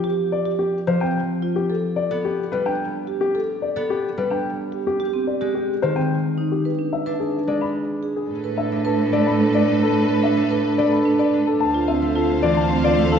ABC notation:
X:1
M:3/4
L:1/16
Q:1/4=109
K:Gmix
V:1 name="Grand piano"
z2 d z G z c g z3 G | z2 d z G z B g z3 G | z2 d z G z B g z3 G | z2 d z G z c g z3 G |
z2 e z ^G z d b z3 G | [K:Am] z2 e z A z d b z d z A | z2 e z A z d b z d z A | a z e z A z d a z d z A |]
V:2 name="String section"
z12 | z12 | z12 | z12 |
z12 | [K:Am] [AB]12- | [AB]8- [AB]3 z | [cf]12 |]
V:3 name="Marimba"
G z2 G z3 C z2 F z | A z2 A z3 D z2 G z | A z2 A z3 D z2 G z | G C z G z3 C z2 _E z |
B D z B z3 D z2 ^G z | [K:Am] z B D z B z3 D B z A | z B D z B z3 D B z A | z F C z F z3 C F z E |]
V:4 name="Harp"
F,6 F,6 | z3 B,3 G,6- | G,3 B,3 G,6- | G,3 _A,3 _E,6 |
z3 D3 ^G,6 | [K:Am] z3 D3 A,4 D2- | D3 D3 A,4 D2- | D3 A,3 E,4 A,2 |]
V:5 name="Cello" clef=bass
z12 | z12 | z12 | z12 |
z12 | [K:Am] A,,12- | A,,12 | D,,12 |]